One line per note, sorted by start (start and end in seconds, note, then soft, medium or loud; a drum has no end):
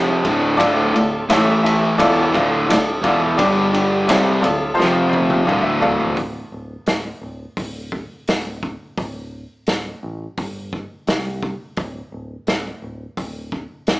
0.00 0.21 F1 medium
0.00 0.24 F2 medium
0.00 0.24 C3 medium
0.00 0.24 F3 loud
0.24 0.57 D1 medium
0.24 0.59 D2 medium
0.24 0.59 A2 loud
0.24 0.59 D3 loud
0.24 kick loud
0.24 ride medium
0.57 0.92 D1 loud
0.57 0.92 D2 medium
0.57 0.93 A2 medium
0.57 0.94 D3 medium
0.57 0.87 F4 loud
0.57 0.87 A4 loud
0.57 0.86 D5 loud
0.57 kick loud
0.57 ride medium
0.93 1.28 D1 medium
0.93 1.22 D2 medium
0.93 1.22 A2 medium
0.93 1.22 F4 medium
0.93 1.22 A4 medium
0.93 1.23 D5 medium
0.93 ride medium
1.29 1.96 A1 medium
1.29 1.98 A2 medium
1.29 1.99 E3 medium
1.29 1.99 A3 loud
1.29 1.57 E4 medium
1.29 1.58 A4 medium
1.29 1.58 E5 loud
1.29 snare loud
1.29 ride loud
1.64 1.92 E4 medium
1.64 1.92 A4 medium
1.64 1.92 E5 medium
1.64 ride medium
1.98 2.32 E1 medium
1.98 2.33 E2 medium
1.98 2.33 B2 loud
1.98 2.34 E3 loud
1.98 2.27 F4 loud
1.98 2.27 A4 loud
1.98 2.27 D5 loud
1.98 kick loud
1.98 ride loud
2.34 2.67 D1 medium
2.34 2.68 D2 medium
2.34 2.68 A2 loud
2.34 2.69 D3 loud
2.34 2.62 F4 medium
2.34 2.62 A4 medium
2.34 2.62 D5 medium
2.34 kick loud
2.34 ride medium
2.67 3.02 D1 medium
2.67 2.96 D2 medium
2.67 2.96 F4 medium
2.67 2.97 A4 medium
2.67 2.97 D5 medium
2.67 ride loud
2.71 2.98 D2 medium
2.71 2.98 A2 medium
2.71 snare loud
3.01 3.37 E1 loud
3.01 3.36 E2 medium
3.01 3.37 E3 loud
3.01 3.32 F4 medium
3.01 3.32 A4 medium
3.01 3.32 D5 loud
3.01 kick loud
3.01 ride medium
3.06 3.39 E2 loud
3.06 3.39 B2 medium
3.06 3.40 E3 loud
3.37 4.05 G1 loud
3.37 4.08 G2 loud
3.37 4.08 D3 medium
3.37 4.09 G3 loud
3.37 3.66 D4 loud
3.37 3.66 G4 loud
3.37 3.66 D5 loud
3.37 kick loud
3.37 ride loud
3.73 4.01 D4 medium
3.73 4.01 G4 medium
3.73 4.01 D5 loud
3.73 ride medium
4.08 4.41 C2 medium
4.08 4.43 C3 medium
4.08 4.43 G3 loud
4.08 4.43 C4 loud
4.08 4.36 F4 medium
4.08 4.36 A4 medium
4.08 4.36 D5 loud
4.08 snare loud
4.08 ride medium
4.41 4.76 D1 medium
4.41 4.72 D2 medium
4.41 4.71 A2 medium
4.41 4.71 F4 medium
4.41 4.71 A4 medium
4.41 4.71 D5 medium
4.41 4.73 A5 medium
4.41 ride medium
4.46 4.73 A2 medium
4.74 5.05 F4 loud
4.74 5.05 C5 loud
4.74 5.04 F5 loud
4.74 4.92 A5 medium
4.79 5.45 F1 medium
4.79 5.47 F2 medium
4.79 5.48 C3 medium
4.79 5.48 F3 loud
4.79 snare medium
4.91 5.10 G5 medium
5.09 5.39 F4 medium
5.09 5.39 C5 medium
5.09 5.40 F5 medium
5.13 high tom medium
5.30 high tom medium
5.45 6.14 D1 loud
5.45 6.17 D2 medium
5.45 6.17 A2 medium
5.45 6.17 D3 medium
5.45 5.75 A4 medium
5.45 5.75 D5 medium
5.45 5.75 F5 medium
5.45 mid tom medium
5.62 6.13 E5 medium
5.81 6.10 A4 medium
5.81 6.10 D5 medium
5.81 6.10 F5 loud
5.81 floor tom loud
6.00 floor tom medium
6.17 6.41 D1 medium
6.17 kick loud
6.17 open hi-hat soft
6.52 6.76 D1 medium
6.86 7.10 D1 medium
6.86 snare loud
6.86 open hi-hat soft
7.21 7.45 D1 medium
7.57 8.04 D1 medium
7.57 kick medium
7.57 open hi-hat medium
7.92 kick medium
8.28 8.75 D1 medium
8.28 snare loud
8.28 open hi-hat medium
8.63 kick medium
8.97 9.44 D1 medium
8.97 kick loud
8.97 open hi-hat soft
9.67 9.91 D1 medium
9.67 snare loud
9.67 open hi-hat soft
10.03 10.26 A1 medium
10.37 10.84 G1 medium
10.37 kick medium
10.37 open hi-hat soft
10.73 kick medium
11.07 11.54 C2 medium
11.07 snare loud
11.07 open hi-hat soft
11.43 kick medium
11.77 12.00 D1 medium
11.77 kick loud
11.77 open hi-hat soft
12.12 12.35 D1 medium
12.47 12.70 D1 medium
12.47 snare loud
12.47 open hi-hat soft
12.82 13.05 D1 medium
13.17 13.64 D1 medium
13.17 kick medium
13.17 open hi-hat medium
13.52 kick medium
13.87 14.00 D1 loud
13.87 snare loud
13.87 open hi-hat medium